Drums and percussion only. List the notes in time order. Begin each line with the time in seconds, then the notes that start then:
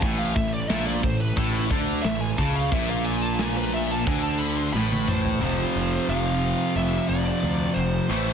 0.02 kick, crash
0.36 kick, crash
0.70 snare, crash
1.03 kick, crash
1.37 kick, crash
1.70 kick, crash
2.04 snare, crash
2.38 kick, crash
2.71 kick, crash
3.06 crash
3.39 snare, crash
3.73 crash
4.07 kick, crash
4.41 crash
4.75 snare
4.92 high tom
5.08 mid tom
5.25 floor tom